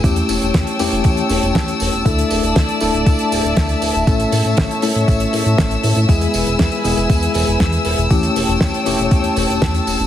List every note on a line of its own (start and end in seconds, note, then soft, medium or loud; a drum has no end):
0.04 0.22 E2 loud
0.04 0.76 A3 medium
0.04 0.77 C#4 medium
0.04 0.77 E4 medium
0.04 0.76 G4 medium
0.04 2.04 C#5 medium
0.04 2.04 G5 medium
0.04 6.05 A5 medium
0.04 4.03 E6 medium
0.04 kick loud
0.04 closed hi-hat medium
0.04 tambourine soft
0.16 closed hi-hat medium
0.16 tambourine soft
0.29 0.38 E1 loud
0.29 open hi-hat loud
0.29 tambourine medium
0.42 0.51 E1 medium
0.42 closed hi-hat medium
0.42 tambourine soft
0.54 0.63 E2 medium
0.54 kick medium
0.54 snare loud
0.54 closed hi-hat medium
0.54 tambourine soft
0.67 closed hi-hat medium
0.67 tambourine soft
0.79 0.89 E1 medium
0.79 2.03 A3 medium
0.79 2.03 C#4 medium
0.79 2.03 E4 medium
0.79 2.03 G4 medium
0.79 open hi-hat loud
0.79 tambourine medium
0.92 1.01 E1 medium
0.92 closed hi-hat medium
0.92 tambourine soft
1.04 1.23 E2 medium
1.04 kick loud
1.04 closed hi-hat medium
1.04 tambourine soft
1.17 closed hi-hat medium
1.17 tambourine soft
1.29 1.39 E1 loud
1.29 open hi-hat loud
1.29 tambourine medium
1.43 1.52 E1 medium
1.43 closed hi-hat medium
1.43 tambourine soft
1.55 1.73 E2 medium
1.55 kick loud
1.55 snare loud
1.55 closed hi-hat medium
1.55 tambourine soft
1.68 closed hi-hat medium
1.68 tambourine soft
1.80 1.89 E1 medium
1.80 open hi-hat loud
1.80 tambourine medium
1.93 2.02 E1 loud
1.93 closed hi-hat medium
1.93 tambourine soft
2.06 2.24 D2 loud
2.06 2.78 A3 medium
2.06 2.78 D4 medium
2.06 2.78 E4 medium
2.06 2.78 A4 medium
2.06 4.05 D5 medium
2.06 8.07 E5 medium
2.06 kick loud
2.06 closed hi-hat medium
2.06 tambourine soft
2.19 closed hi-hat medium
2.19 tambourine soft
2.30 2.40 D1 medium
2.30 open hi-hat loud
2.30 tambourine medium
2.43 2.52 D1 medium
2.43 closed hi-hat soft
2.43 tambourine soft
2.56 2.65 D2 medium
2.56 kick medium
2.56 snare loud
2.56 closed hi-hat medium
2.56 tambourine soft
2.69 closed hi-hat soft
2.69 tambourine soft
2.80 2.90 D1 medium
2.80 4.04 A3 medium
2.80 4.04 D4 medium
2.80 4.04 E4 medium
2.80 4.04 A4 medium
2.80 open hi-hat loud
2.80 tambourine medium
2.94 3.03 D1 medium
2.94 closed hi-hat medium
2.94 tambourine soft
3.06 3.15 D2 medium
3.06 kick loud
3.06 closed hi-hat medium
3.06 tambourine soft
3.19 closed hi-hat medium
3.19 tambourine soft
3.32 3.41 D1 medium
3.32 open hi-hat loud
3.32 tambourine medium
3.44 3.53 D1 medium
3.44 closed hi-hat medium
3.44 tambourine soft
3.56 3.75 D2 medium
3.56 kick loud
3.56 snare loud
3.56 closed hi-hat medium
3.56 tambourine soft
3.69 closed hi-hat medium
3.69 tambourine soft
3.82 3.91 D1 medium
3.82 open hi-hat loud
3.82 tambourine medium
3.95 4.04 D1 loud
3.95 closed hi-hat soft
3.95 tambourine soft
4.07 4.25 A1 loud
4.07 4.80 A3 medium
4.07 4.80 C#4 medium
4.07 4.80 E4 medium
4.07 4.80 A4 medium
4.07 6.07 C#5 medium
4.07 10.07 E6 medium
4.07 kick loud
4.07 closed hi-hat medium
4.07 tambourine soft
4.20 closed hi-hat medium
4.20 tambourine soft
4.32 4.41 A2 medium
4.32 open hi-hat loud
4.32 tambourine medium
4.45 4.54 A2 medium
4.45 closed hi-hat medium
4.45 tambourine soft
4.57 4.67 A1 medium
4.57 kick loud
4.57 snare loud
4.57 closed hi-hat medium
4.57 tambourine soft
4.71 closed hi-hat medium
4.71 tambourine soft
4.82 4.92 A2 medium
4.82 6.06 A3 medium
4.82 6.06 C#4 medium
4.82 6.06 E4 medium
4.82 6.06 A4 medium
4.82 open hi-hat loud
4.82 tambourine medium
4.95 5.05 A2 medium
4.95 closed hi-hat medium
4.95 tambourine soft
5.08 5.26 A1 medium
5.08 kick loud
5.08 closed hi-hat medium
5.08 tambourine soft
5.20 closed hi-hat medium
5.20 tambourine soft
5.33 5.42 A2 loud
5.33 open hi-hat loud
5.33 tambourine medium
5.46 5.55 A2 medium
5.46 closed hi-hat medium
5.46 tambourine soft
5.58 5.76 A1 medium
5.58 kick loud
5.58 snare loud
5.58 closed hi-hat medium
5.58 tambourine soft
5.71 closed hi-hat medium
5.71 tambourine soft
5.83 5.93 A2 medium
5.83 open hi-hat loud
5.83 tambourine medium
5.95 6.05 A2 loud
5.95 closed hi-hat medium
5.95 tambourine soft
6.09 6.27 E2 loud
6.09 6.82 G#3 medium
6.09 6.82 B3 medium
6.09 6.82 E4 medium
6.09 6.81 G#4 medium
6.09 8.09 B4 medium
6.09 8.09 G#5 medium
6.09 kick loud
6.09 closed hi-hat medium
6.09 tambourine soft
6.21 closed hi-hat medium
6.21 tambourine soft
6.34 6.43 E1 medium
6.34 open hi-hat loud
6.34 tambourine medium
6.46 6.56 E1 medium
6.46 closed hi-hat medium
6.46 tambourine soft
6.59 6.68 E2 medium
6.59 kick loud
6.59 snare loud
6.59 closed hi-hat medium
6.59 tambourine soft
6.72 closed hi-hat medium
6.72 tambourine soft
6.84 6.94 E1 medium
6.84 8.08 G#3 medium
6.84 8.08 B3 medium
6.84 8.08 E4 medium
6.84 8.08 G#4 medium
6.84 open hi-hat loud
6.84 tambourine medium
6.97 7.06 E1 medium
6.97 closed hi-hat medium
6.97 tambourine soft
7.10 7.28 E2 medium
7.10 kick loud
7.10 closed hi-hat medium
7.10 tambourine soft
7.23 closed hi-hat medium
7.23 tambourine soft
7.34 7.44 E1 loud
7.34 open hi-hat loud
7.34 tambourine medium
7.47 7.57 E1 medium
7.47 closed hi-hat medium
7.47 tambourine soft
7.60 7.78 E2 loud
7.60 kick loud
7.60 snare loud
7.60 closed hi-hat medium
7.60 tambourine soft
7.73 closed hi-hat medium
7.73 tambourine soft
7.85 7.95 E1 medium
7.85 open hi-hat loud
7.85 tambourine medium
7.98 8.07 E1 loud
7.98 closed hi-hat medium
7.98 tambourine soft
8.10 8.29 E2 loud
8.10 8.83 A3 medium
8.10 8.83 C#4 medium
8.10 8.83 E4 medium
8.10 8.83 G4 medium
8.10 10.07 C#5 medium
8.10 10.07 G5 medium
8.10 10.07 A5 medium
8.10 kick loud
8.10 closed hi-hat medium
8.10 tambourine soft
8.23 closed hi-hat medium
8.23 tambourine soft
8.36 8.45 E1 loud
8.36 open hi-hat loud
8.36 tambourine medium
8.48 8.57 E1 medium
8.48 closed hi-hat medium
8.48 tambourine soft
8.61 8.70 E2 medium
8.61 kick loud
8.61 snare loud
8.61 closed hi-hat medium
8.61 tambourine soft
8.74 closed hi-hat medium
8.74 tambourine soft
8.86 8.95 E1 medium
8.86 10.07 A3 medium
8.86 10.07 C#4 medium
8.86 10.07 E4 medium
8.86 10.07 G4 medium
8.86 open hi-hat loud
8.86 tambourine medium
8.99 9.08 E1 medium
8.99 closed hi-hat medium
8.99 tambourine soft
9.11 9.29 E2 medium
9.11 kick loud
9.11 closed hi-hat medium
9.11 tambourine soft
9.24 closed hi-hat medium
9.24 tambourine soft
9.36 9.46 E1 loud
9.36 open hi-hat loud
9.36 tambourine medium
9.49 9.58 E1 loud
9.49 closed hi-hat medium
9.49 tambourine soft
9.62 9.80 E2 loud
9.62 kick loud
9.62 snare loud
9.62 closed hi-hat medium
9.62 tambourine soft
9.74 closed hi-hat medium
9.74 tambourine soft
9.87 9.96 E1 medium
9.87 open hi-hat medium
9.87 tambourine medium
10.00 10.07 E1 loud
10.00 closed hi-hat medium
10.00 tambourine soft